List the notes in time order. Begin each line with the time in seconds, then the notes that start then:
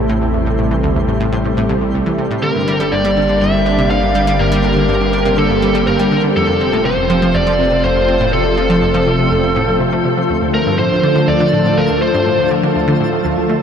Already playing: A1 C3 G3 A3 C4 E4 A4 C5
0.09 A2
0.22 E2
0.34 E2
0.46 A2
0.59 A2
0.71 E3
0.83 D2
0.96 E2
1.08 A2
1.20 A2
1.33 A2
1.45 A2
1.57 A2
1.69 C2
1.81 C2
1.94 C2
2.06 E3
2.18 C3
2.31 A2
2.42 G1 D3 A#4
2.55 G2
2.65 G3 G4
2.77 G3 A#3 A4
2.92 G2 D5
3.05 G3
3.17 D3
3.27 D3 D5
3.41 G2 E5
3.54 G2
3.66 D4
3.78 C3
3.90 D3 F5
4.03 G2
4.15 G3
4.27 G3
4.39 G2 A#4
4.52 G3
4.64 D3
4.76 D3
4.88 G2
5.01 G2
5.13 D4
5.25 C3
5.38 D3 A4
5.50 G2
5.62 G3
5.75 G3
5.87 G2 A#4
5.99 G3
6.12 D3
6.24 D3
6.36 F1 F2 C3 A4
6.46 F2 F3
6.61 C4
6.73 A2
6.79 F4
6.85 C3 C5
6.94 F2 A3
7.10 F3
7.22 F3
7.34 F2 A4 D5
7.47 F3
7.59 C3
7.72 C3
7.84 F2 C5
7.96 F2
8.09 C4
8.21 A2
8.33 C3 A4
8.45 F2
8.57 F3
8.70 F3
8.82 F2
8.94 F3
9.07 C3
9.19 C3
9.31 F2
9.44 F2
9.56 A2
9.68 F2
9.80 C3
9.93 A3
10.05 C3
10.17 F3
10.30 D2 D3 F3 A5
10.42 D2
10.54 A3 A#4
10.67 G2
10.79 A2 C5
10.91 D2
11.03 D3
11.16 D3
11.27 D2 F4 D5
11.40 D3
11.53 A2
11.65 A2
11.77 D2 A#4
11.90 D2
12.02 A3 C5
12.14 G2
12.26 A2
12.39 D2
12.51 D3
12.63 D3
12.75 D2
12.88 D3
13.00 A2
13.13 A2
13.25 D2
13.37 D2
13.49 A3